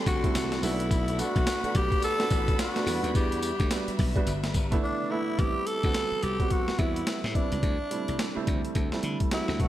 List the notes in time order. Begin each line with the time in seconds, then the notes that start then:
Already playing: G3 A3 C4 E4 G4 A4 D5 A5 C6
0.06 D2 F#4, kick, closed hi-hat, tambourine
0.23 G3 A3 C4 E4, kick, closed hi-hat
0.35 C2, snare, closed hi-hat, tambourine
0.52 snare, closed hi-hat
0.62 B1 A3 B3 D4 E4 F#4 F#5 B5, open hi-hat, tambourine
0.80 closed hi-hat
0.91 kick, closed hi-hat, tambourine
1.08 closed hi-hat
1.18 A3 B3 D4 F#4, closed hi-hat, tambourine
1.36 B1, kick, closed hi-hat
1.47 snare, closed hi-hat, tambourine
1.63 A3 B3 D4 F#4, muted slap bass stroke, closed hi-hat
1.75 B1 G4, kick, closed hi-hat
1.92 kick, closed hi-hat
2.02 A4, closed hi-hat, tambourine
2.19 A3 B3 D4 F#4, snare, closed hi-hat
2.30 A1, kick, closed hi-hat, tambourine
2.48 kick, closed hi-hat
2.59 F#4, snare, closed hi-hat, tambourine
2.75 A3 B3 D4 F#4, snare, closed hi-hat
2.86 E2 G3 B3 D4 E5 F#5, open hi-hat, tambourine
3.03 D#2, closed hi-hat
3.15 E2 G4, kick, closed hi-hat, tambourine
3.32 closed hi-hat
3.42 closed hi-hat, tambourine
3.60 D2, kick, closed hi-hat
3.71 G3 B3 D4 F#4, snare, closed hi-hat, tambourine
3.88 muted slap bass stroke, closed hi-hat
3.99 B1, kick, open hi-hat
4.16 G3 B3 D4 F#4, kick, closed hi-hat
4.27 G1, closed hi-hat, tambourine
4.44 snare, closed hi-hat
4.54 G1, kick, closed hi-hat, tambourine
4.71 A3 B3 D4 E4, kick, closed hi-hat
4.83 D4
5.11 A3 B3 D4 E4
5.39 A1 G3 B3 C4 E4 G4, kick, closed hi-hat
5.67 A4, closed hi-hat
5.83 D2 G3 B3 C4 F#4, kick, closed hi-hat
5.94 snare, closed hi-hat
6.12 muted slap bass stroke
6.23 C2 G4, closed hi-hat
6.40 G3 B3 C4 F#4, kick, closed hi-hat
6.50 F#4, kick, closed hi-hat
6.68 muted slap bass stroke, snare
6.79 E2 G3 B3 C4 E4, kick, closed hi-hat
6.96 closed hi-hat
7.07 snare, closed hi-hat
7.24 A2, snare
7.34 G3 B3 C4 D4 E4, kick, closed hi-hat
7.52 C#2, closed hi-hat
7.63 D2, kick, closed hi-hat
7.91 G3 A3 C4 E4, closed hi-hat
8.08 C2, closed hi-hat
8.19 snare, closed hi-hat
8.35 G3 A3 C4 E4, muted slap bass stroke
8.47 D2, kick, closed hi-hat
8.65 closed hi-hat
8.75 D2, kick, closed hi-hat
8.92 G3 A3 C4 E4, snare
9.03 D3, closed hi-hat
9.20 kick, closed hi-hat
9.31 G3 A3 C4 E4 F#4, snare, closed hi-hat
9.48 D2, snare
9.60 B1 A3 B3 D4 F#4, kick, closed hi-hat